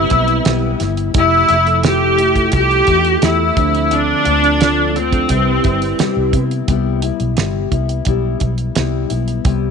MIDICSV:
0, 0, Header, 1, 7, 480
1, 0, Start_track
1, 0, Key_signature, 0, "major"
1, 0, Tempo, 691244
1, 797, Time_signature, 4, 2, 24, 8
1, 6741, End_track
2, 0, Start_track
2, 0, Title_t, "Viola"
2, 0, Program_c, 0, 41
2, 0, Note_on_c, 0, 64, 93
2, 530, Note_off_c, 0, 64, 0
2, 817, Note_on_c, 0, 64, 124
2, 1259, Note_off_c, 0, 64, 0
2, 1296, Note_on_c, 0, 67, 108
2, 1738, Note_off_c, 0, 67, 0
2, 1769, Note_on_c, 0, 67, 126
2, 2252, Note_on_c, 0, 64, 99
2, 2262, Note_off_c, 0, 67, 0
2, 2730, Note_on_c, 0, 62, 110
2, 2740, Note_off_c, 0, 64, 0
2, 3445, Note_on_c, 0, 60, 98
2, 3455, Note_off_c, 0, 62, 0
2, 4402, Note_off_c, 0, 60, 0
2, 6741, End_track
3, 0, Start_track
3, 0, Title_t, "Tonewheel organ"
3, 0, Program_c, 1, 16
3, 0, Note_on_c, 1, 55, 73
3, 0, Note_on_c, 1, 60, 61
3, 0, Note_on_c, 1, 64, 72
3, 0, Note_on_c, 1, 71, 76
3, 487, Note_off_c, 1, 55, 0
3, 490, Note_off_c, 1, 60, 0
3, 494, Note_off_c, 1, 64, 0
3, 496, Note_off_c, 1, 71, 0
3, 786, Note_on_c, 1, 53, 74
3, 795, Note_on_c, 1, 57, 69
3, 799, Note_on_c, 1, 64, 75
3, 804, Note_on_c, 1, 67, 88
3, 1081, Note_off_c, 1, 53, 0
3, 1085, Note_off_c, 1, 57, 0
3, 1087, Note_off_c, 1, 64, 0
3, 1090, Note_off_c, 1, 67, 0
3, 1142, Note_on_c, 1, 53, 84
3, 1148, Note_on_c, 1, 57, 78
3, 1154, Note_on_c, 1, 64, 68
3, 1160, Note_on_c, 1, 69, 87
3, 1535, Note_off_c, 1, 53, 0
3, 1538, Note_off_c, 1, 57, 0
3, 1541, Note_off_c, 1, 64, 0
3, 1544, Note_off_c, 1, 69, 0
3, 1622, Note_on_c, 1, 65, 72
3, 1629, Note_on_c, 1, 57, 69
3, 1636, Note_on_c, 1, 64, 72
3, 1639, Note_on_c, 1, 69, 76
3, 2402, Note_off_c, 1, 65, 0
3, 2405, Note_off_c, 1, 57, 0
3, 2409, Note_off_c, 1, 64, 0
3, 2410, Note_off_c, 1, 69, 0
3, 2470, Note_on_c, 1, 53, 75
3, 2476, Note_on_c, 1, 60, 74
3, 2481, Note_on_c, 1, 62, 67
3, 2485, Note_on_c, 1, 69, 88
3, 2956, Note_off_c, 1, 53, 0
3, 2959, Note_off_c, 1, 60, 0
3, 2962, Note_off_c, 1, 62, 0
3, 2964, Note_off_c, 1, 69, 0
3, 3064, Note_on_c, 1, 53, 79
3, 3071, Note_on_c, 1, 60, 72
3, 3078, Note_on_c, 1, 62, 73
3, 3082, Note_on_c, 1, 69, 91
3, 3457, Note_off_c, 1, 53, 0
3, 3460, Note_off_c, 1, 60, 0
3, 3464, Note_off_c, 1, 62, 0
3, 3466, Note_off_c, 1, 69, 0
3, 3546, Note_on_c, 1, 53, 77
3, 3551, Note_on_c, 1, 60, 67
3, 3556, Note_on_c, 1, 62, 64
3, 3561, Note_on_c, 1, 69, 84
3, 3658, Note_off_c, 1, 60, 0
3, 3660, Note_on_c, 1, 55, 75
3, 3667, Note_on_c, 1, 60, 77
3, 3669, Note_off_c, 1, 69, 0
3, 3671, Note_off_c, 1, 53, 0
3, 3673, Note_on_c, 1, 64, 75
3, 3676, Note_off_c, 1, 62, 0
3, 3678, Note_on_c, 1, 69, 68
3, 3722, Note_off_c, 1, 69, 0
3, 3722, Note_on_c, 1, 71, 90
3, 4442, Note_off_c, 1, 55, 0
3, 4445, Note_off_c, 1, 60, 0
3, 4448, Note_off_c, 1, 64, 0
3, 4473, Note_off_c, 1, 71, 0
3, 6741, End_track
4, 0, Start_track
4, 0, Title_t, "Steel-string acoustic guitar"
4, 0, Program_c, 2, 25
4, 0, Note_on_c, 2, 48, 60
4, 0, Note_on_c, 2, 55, 72
4, 0, Note_on_c, 2, 59, 66
4, 70, Note_on_c, 2, 64, 62
4, 75, Note_off_c, 2, 48, 0
4, 76, Note_off_c, 2, 59, 0
4, 80, Note_off_c, 2, 55, 0
4, 85, Note_on_c, 2, 59, 56
4, 97, Note_on_c, 2, 55, 49
4, 309, Note_off_c, 2, 55, 0
4, 313, Note_off_c, 2, 64, 0
4, 315, Note_off_c, 2, 59, 0
4, 317, Note_on_c, 2, 55, 91
4, 324, Note_on_c, 2, 59, 97
4, 329, Note_on_c, 2, 64, 89
4, 539, Note_off_c, 2, 64, 0
4, 548, Note_on_c, 2, 64, 69
4, 557, Note_off_c, 2, 55, 0
4, 557, Note_off_c, 2, 59, 0
4, 565, Note_on_c, 2, 59, 62
4, 576, Note_on_c, 2, 55, 55
4, 786, Note_off_c, 2, 55, 0
4, 788, Note_on_c, 2, 53, 76
4, 792, Note_off_c, 2, 59, 0
4, 792, Note_off_c, 2, 64, 0
4, 794, Note_on_c, 2, 57, 96
4, 801, Note_on_c, 2, 64, 103
4, 806, Note_on_c, 2, 67, 95
4, 1022, Note_off_c, 2, 67, 0
4, 1030, Note_on_c, 2, 67, 61
4, 1032, Note_off_c, 2, 53, 0
4, 1035, Note_off_c, 2, 57, 0
4, 1037, Note_off_c, 2, 64, 0
4, 1045, Note_on_c, 2, 64, 51
4, 1059, Note_on_c, 2, 57, 43
4, 1265, Note_off_c, 2, 57, 0
4, 1267, Note_on_c, 2, 53, 74
4, 1272, Note_off_c, 2, 64, 0
4, 1273, Note_off_c, 2, 67, 0
4, 1273, Note_on_c, 2, 57, 73
4, 1280, Note_on_c, 2, 64, 91
4, 1285, Note_on_c, 2, 67, 85
4, 1500, Note_off_c, 2, 67, 0
4, 1509, Note_on_c, 2, 67, 60
4, 1512, Note_off_c, 2, 53, 0
4, 1515, Note_off_c, 2, 57, 0
4, 1515, Note_off_c, 2, 64, 0
4, 1524, Note_on_c, 2, 64, 60
4, 1536, Note_on_c, 2, 57, 49
4, 1749, Note_on_c, 2, 53, 64
4, 1750, Note_off_c, 2, 57, 0
4, 1752, Note_off_c, 2, 67, 0
4, 1757, Note_off_c, 2, 64, 0
4, 1759, Note_on_c, 2, 57, 62
4, 1766, Note_on_c, 2, 64, 63
4, 1774, Note_on_c, 2, 67, 74
4, 1980, Note_off_c, 2, 67, 0
4, 1988, Note_on_c, 2, 67, 56
4, 1992, Note_off_c, 2, 53, 0
4, 1994, Note_off_c, 2, 64, 0
4, 1997, Note_off_c, 2, 57, 0
4, 2002, Note_on_c, 2, 64, 54
4, 2014, Note_on_c, 2, 57, 45
4, 2228, Note_off_c, 2, 57, 0
4, 2232, Note_off_c, 2, 64, 0
4, 2232, Note_off_c, 2, 67, 0
4, 2236, Note_on_c, 2, 57, 91
4, 2240, Note_on_c, 2, 64, 100
4, 2248, Note_on_c, 2, 67, 93
4, 2476, Note_off_c, 2, 57, 0
4, 2478, Note_off_c, 2, 64, 0
4, 2482, Note_off_c, 2, 67, 0
4, 2485, Note_on_c, 2, 60, 56
4, 2496, Note_on_c, 2, 57, 53
4, 2710, Note_off_c, 2, 57, 0
4, 2710, Note_on_c, 2, 50, 89
4, 2716, Note_off_c, 2, 60, 0
4, 2719, Note_on_c, 2, 57, 83
4, 2724, Note_on_c, 2, 60, 85
4, 2730, Note_on_c, 2, 65, 88
4, 2939, Note_off_c, 2, 65, 0
4, 2947, Note_on_c, 2, 65, 55
4, 2953, Note_off_c, 2, 50, 0
4, 2953, Note_off_c, 2, 60, 0
4, 2957, Note_off_c, 2, 57, 0
4, 2962, Note_on_c, 2, 60, 49
4, 2976, Note_on_c, 2, 57, 44
4, 3189, Note_off_c, 2, 57, 0
4, 3190, Note_on_c, 2, 50, 85
4, 3192, Note_off_c, 2, 65, 0
4, 3197, Note_off_c, 2, 60, 0
4, 3198, Note_on_c, 2, 57, 80
4, 3205, Note_on_c, 2, 60, 86
4, 3209, Note_on_c, 2, 65, 82
4, 3421, Note_off_c, 2, 65, 0
4, 3429, Note_on_c, 2, 65, 60
4, 3433, Note_off_c, 2, 50, 0
4, 3435, Note_off_c, 2, 60, 0
4, 3437, Note_off_c, 2, 57, 0
4, 3443, Note_on_c, 2, 60, 52
4, 3457, Note_on_c, 2, 57, 44
4, 3667, Note_on_c, 2, 48, 60
4, 3673, Note_off_c, 2, 65, 0
4, 3674, Note_off_c, 2, 57, 0
4, 3676, Note_on_c, 2, 55, 74
4, 3680, Note_off_c, 2, 60, 0
4, 3694, Note_on_c, 2, 64, 77
4, 3903, Note_off_c, 2, 64, 0
4, 3911, Note_on_c, 2, 64, 59
4, 3912, Note_off_c, 2, 48, 0
4, 3917, Note_off_c, 2, 55, 0
4, 3938, Note_on_c, 2, 55, 44
4, 4154, Note_off_c, 2, 55, 0
4, 4154, Note_off_c, 2, 64, 0
4, 4155, Note_on_c, 2, 48, 101
4, 4162, Note_on_c, 2, 55, 88
4, 4173, Note_on_c, 2, 64, 100
4, 4387, Note_off_c, 2, 64, 0
4, 4395, Note_on_c, 2, 64, 73
4, 4396, Note_off_c, 2, 48, 0
4, 4400, Note_off_c, 2, 55, 0
4, 4409, Note_on_c, 2, 59, 52
4, 4421, Note_on_c, 2, 55, 53
4, 4634, Note_off_c, 2, 55, 0
4, 4637, Note_off_c, 2, 64, 0
4, 4638, Note_on_c, 2, 48, 85
4, 4643, Note_off_c, 2, 59, 0
4, 4643, Note_on_c, 2, 55, 100
4, 4650, Note_on_c, 2, 59, 107
4, 4654, Note_on_c, 2, 64, 91
4, 4868, Note_off_c, 2, 64, 0
4, 4876, Note_on_c, 2, 64, 62
4, 4878, Note_off_c, 2, 48, 0
4, 4881, Note_off_c, 2, 55, 0
4, 4881, Note_off_c, 2, 59, 0
4, 4890, Note_on_c, 2, 59, 60
4, 4902, Note_on_c, 2, 55, 55
4, 5114, Note_on_c, 2, 48, 58
4, 5115, Note_off_c, 2, 55, 0
4, 5118, Note_off_c, 2, 64, 0
4, 5123, Note_on_c, 2, 55, 68
4, 5124, Note_off_c, 2, 59, 0
4, 5132, Note_on_c, 2, 59, 63
4, 5140, Note_on_c, 2, 64, 67
4, 5345, Note_off_c, 2, 64, 0
4, 5354, Note_on_c, 2, 64, 59
4, 5356, Note_off_c, 2, 48, 0
4, 5360, Note_off_c, 2, 59, 0
4, 5361, Note_off_c, 2, 55, 0
4, 5368, Note_on_c, 2, 59, 53
4, 5381, Note_on_c, 2, 55, 48
4, 5594, Note_off_c, 2, 55, 0
4, 5597, Note_off_c, 2, 64, 0
4, 5599, Note_off_c, 2, 59, 0
4, 5603, Note_on_c, 2, 55, 90
4, 5607, Note_on_c, 2, 59, 97
4, 5611, Note_on_c, 2, 64, 96
4, 5824, Note_off_c, 2, 64, 0
4, 5832, Note_on_c, 2, 64, 57
4, 5841, Note_off_c, 2, 59, 0
4, 5842, Note_off_c, 2, 55, 0
4, 5849, Note_on_c, 2, 59, 55
4, 5862, Note_on_c, 2, 55, 49
4, 6076, Note_on_c, 2, 48, 64
4, 6077, Note_off_c, 2, 64, 0
4, 6078, Note_off_c, 2, 55, 0
4, 6085, Note_off_c, 2, 59, 0
4, 6086, Note_on_c, 2, 55, 76
4, 6094, Note_on_c, 2, 59, 74
4, 6103, Note_on_c, 2, 64, 80
4, 6306, Note_off_c, 2, 64, 0
4, 6314, Note_on_c, 2, 64, 59
4, 6319, Note_off_c, 2, 48, 0
4, 6320, Note_off_c, 2, 59, 0
4, 6324, Note_off_c, 2, 55, 0
4, 6328, Note_on_c, 2, 59, 59
4, 6339, Note_on_c, 2, 55, 54
4, 6555, Note_off_c, 2, 55, 0
4, 6556, Note_on_c, 2, 48, 87
4, 6558, Note_off_c, 2, 64, 0
4, 6561, Note_off_c, 2, 59, 0
4, 6563, Note_on_c, 2, 55, 80
4, 6569, Note_on_c, 2, 59, 86
4, 6575, Note_on_c, 2, 64, 92
4, 6741, Note_off_c, 2, 48, 0
4, 6741, Note_off_c, 2, 55, 0
4, 6741, Note_off_c, 2, 59, 0
4, 6741, Note_off_c, 2, 64, 0
4, 6741, End_track
5, 0, Start_track
5, 0, Title_t, "Fingered electric bass"
5, 0, Program_c, 3, 33
5, 78, Note_on_c, 3, 35, 90
5, 270, Note_off_c, 3, 35, 0
5, 320, Note_on_c, 3, 35, 98
5, 511, Note_off_c, 3, 35, 0
5, 561, Note_on_c, 3, 31, 97
5, 751, Note_off_c, 3, 31, 0
5, 795, Note_on_c, 3, 29, 105
5, 988, Note_off_c, 3, 29, 0
5, 1041, Note_on_c, 3, 29, 103
5, 1731, Note_off_c, 3, 29, 0
5, 1758, Note_on_c, 3, 36, 99
5, 1949, Note_off_c, 3, 36, 0
5, 1999, Note_on_c, 3, 40, 86
5, 2190, Note_off_c, 3, 40, 0
5, 2238, Note_on_c, 3, 40, 98
5, 2429, Note_off_c, 3, 40, 0
5, 2477, Note_on_c, 3, 38, 104
5, 2860, Note_off_c, 3, 38, 0
5, 2958, Note_on_c, 3, 38, 97
5, 3650, Note_off_c, 3, 38, 0
5, 3680, Note_on_c, 3, 36, 104
5, 3871, Note_off_c, 3, 36, 0
5, 3922, Note_on_c, 3, 31, 80
5, 4112, Note_off_c, 3, 31, 0
5, 4283, Note_on_c, 3, 36, 88
5, 4376, Note_off_c, 3, 36, 0
5, 4398, Note_on_c, 3, 48, 86
5, 4590, Note_off_c, 3, 48, 0
5, 4639, Note_on_c, 3, 36, 114
5, 4927, Note_off_c, 3, 36, 0
5, 5003, Note_on_c, 3, 35, 78
5, 5097, Note_off_c, 3, 35, 0
5, 5121, Note_on_c, 3, 31, 83
5, 5312, Note_off_c, 3, 31, 0
5, 5359, Note_on_c, 3, 36, 78
5, 5551, Note_off_c, 3, 36, 0
5, 5602, Note_on_c, 3, 35, 88
5, 5793, Note_off_c, 3, 35, 0
5, 5841, Note_on_c, 3, 35, 82
5, 6033, Note_off_c, 3, 35, 0
5, 6087, Note_on_c, 3, 36, 81
5, 6277, Note_off_c, 3, 36, 0
5, 6326, Note_on_c, 3, 35, 85
5, 6516, Note_off_c, 3, 35, 0
5, 6563, Note_on_c, 3, 36, 96
5, 6741, Note_off_c, 3, 36, 0
5, 6741, End_track
6, 0, Start_track
6, 0, Title_t, "Muted fingered electric bass strokes"
6, 4163, Note_on_c, 9, 29, 47
6, 4232, Note_off_c, 9, 29, 0
6, 6741, End_track
7, 0, Start_track
7, 0, Title_t, "Drums"
7, 70, Note_on_c, 9, 42, 75
7, 78, Note_on_c, 9, 36, 85
7, 140, Note_off_c, 9, 42, 0
7, 148, Note_off_c, 9, 36, 0
7, 192, Note_on_c, 9, 42, 48
7, 262, Note_off_c, 9, 42, 0
7, 313, Note_on_c, 9, 42, 96
7, 320, Note_on_c, 9, 38, 110
7, 383, Note_off_c, 9, 42, 0
7, 389, Note_off_c, 9, 38, 0
7, 555, Note_on_c, 9, 42, 69
7, 560, Note_on_c, 9, 38, 35
7, 624, Note_off_c, 9, 42, 0
7, 630, Note_off_c, 9, 38, 0
7, 676, Note_on_c, 9, 42, 53
7, 746, Note_off_c, 9, 42, 0
7, 793, Note_on_c, 9, 42, 95
7, 796, Note_on_c, 9, 36, 125
7, 863, Note_off_c, 9, 42, 0
7, 865, Note_off_c, 9, 36, 0
7, 1032, Note_on_c, 9, 42, 82
7, 1101, Note_off_c, 9, 42, 0
7, 1157, Note_on_c, 9, 42, 48
7, 1227, Note_off_c, 9, 42, 0
7, 1274, Note_on_c, 9, 42, 94
7, 1282, Note_on_c, 9, 38, 102
7, 1344, Note_off_c, 9, 42, 0
7, 1351, Note_off_c, 9, 38, 0
7, 1518, Note_on_c, 9, 42, 68
7, 1587, Note_off_c, 9, 42, 0
7, 1636, Note_on_c, 9, 36, 80
7, 1639, Note_on_c, 9, 42, 59
7, 1706, Note_off_c, 9, 36, 0
7, 1708, Note_off_c, 9, 42, 0
7, 1748, Note_on_c, 9, 42, 102
7, 1758, Note_on_c, 9, 36, 91
7, 1818, Note_off_c, 9, 42, 0
7, 1827, Note_off_c, 9, 36, 0
7, 1882, Note_on_c, 9, 42, 35
7, 1951, Note_off_c, 9, 42, 0
7, 1992, Note_on_c, 9, 42, 75
7, 1998, Note_on_c, 9, 36, 84
7, 2061, Note_off_c, 9, 42, 0
7, 2068, Note_off_c, 9, 36, 0
7, 2115, Note_on_c, 9, 42, 52
7, 2185, Note_off_c, 9, 42, 0
7, 2236, Note_on_c, 9, 42, 101
7, 2242, Note_on_c, 9, 38, 95
7, 2305, Note_off_c, 9, 42, 0
7, 2312, Note_off_c, 9, 38, 0
7, 2477, Note_on_c, 9, 42, 67
7, 2478, Note_on_c, 9, 36, 112
7, 2547, Note_off_c, 9, 36, 0
7, 2547, Note_off_c, 9, 42, 0
7, 2601, Note_on_c, 9, 42, 52
7, 2670, Note_off_c, 9, 42, 0
7, 2716, Note_on_c, 9, 42, 82
7, 2786, Note_off_c, 9, 42, 0
7, 2954, Note_on_c, 9, 42, 77
7, 3023, Note_off_c, 9, 42, 0
7, 3082, Note_on_c, 9, 42, 49
7, 3152, Note_off_c, 9, 42, 0
7, 3198, Note_on_c, 9, 42, 97
7, 3206, Note_on_c, 9, 38, 107
7, 3268, Note_off_c, 9, 42, 0
7, 3276, Note_off_c, 9, 38, 0
7, 3444, Note_on_c, 9, 42, 70
7, 3514, Note_off_c, 9, 42, 0
7, 3559, Note_on_c, 9, 36, 82
7, 3562, Note_on_c, 9, 42, 56
7, 3629, Note_off_c, 9, 36, 0
7, 3631, Note_off_c, 9, 42, 0
7, 3673, Note_on_c, 9, 42, 109
7, 3681, Note_on_c, 9, 36, 88
7, 3743, Note_off_c, 9, 42, 0
7, 3751, Note_off_c, 9, 36, 0
7, 3916, Note_on_c, 9, 42, 75
7, 3921, Note_on_c, 9, 36, 90
7, 3986, Note_off_c, 9, 42, 0
7, 3991, Note_off_c, 9, 36, 0
7, 4041, Note_on_c, 9, 42, 55
7, 4110, Note_off_c, 9, 42, 0
7, 4160, Note_on_c, 9, 42, 102
7, 4166, Note_on_c, 9, 38, 102
7, 4229, Note_off_c, 9, 42, 0
7, 4235, Note_off_c, 9, 38, 0
7, 4396, Note_on_c, 9, 36, 91
7, 4399, Note_on_c, 9, 42, 68
7, 4466, Note_off_c, 9, 36, 0
7, 4468, Note_off_c, 9, 42, 0
7, 4522, Note_on_c, 9, 42, 49
7, 4591, Note_off_c, 9, 42, 0
7, 4639, Note_on_c, 9, 42, 82
7, 4640, Note_on_c, 9, 36, 111
7, 4708, Note_off_c, 9, 42, 0
7, 4710, Note_off_c, 9, 36, 0
7, 4876, Note_on_c, 9, 42, 82
7, 4946, Note_off_c, 9, 42, 0
7, 4998, Note_on_c, 9, 42, 44
7, 5068, Note_off_c, 9, 42, 0
7, 5116, Note_on_c, 9, 42, 90
7, 5124, Note_on_c, 9, 38, 102
7, 5185, Note_off_c, 9, 42, 0
7, 5193, Note_off_c, 9, 38, 0
7, 5359, Note_on_c, 9, 36, 88
7, 5359, Note_on_c, 9, 42, 62
7, 5429, Note_off_c, 9, 36, 0
7, 5429, Note_off_c, 9, 42, 0
7, 5480, Note_on_c, 9, 42, 53
7, 5550, Note_off_c, 9, 42, 0
7, 5591, Note_on_c, 9, 42, 92
7, 5601, Note_on_c, 9, 36, 87
7, 5661, Note_off_c, 9, 42, 0
7, 5670, Note_off_c, 9, 36, 0
7, 5834, Note_on_c, 9, 42, 69
7, 5842, Note_on_c, 9, 36, 85
7, 5904, Note_off_c, 9, 42, 0
7, 5911, Note_off_c, 9, 36, 0
7, 5957, Note_on_c, 9, 42, 47
7, 6026, Note_off_c, 9, 42, 0
7, 6079, Note_on_c, 9, 42, 89
7, 6086, Note_on_c, 9, 38, 92
7, 6149, Note_off_c, 9, 42, 0
7, 6155, Note_off_c, 9, 38, 0
7, 6319, Note_on_c, 9, 42, 63
7, 6389, Note_off_c, 9, 42, 0
7, 6442, Note_on_c, 9, 42, 49
7, 6511, Note_off_c, 9, 42, 0
7, 6560, Note_on_c, 9, 42, 88
7, 6562, Note_on_c, 9, 36, 123
7, 6630, Note_off_c, 9, 42, 0
7, 6631, Note_off_c, 9, 36, 0
7, 6741, End_track
0, 0, End_of_file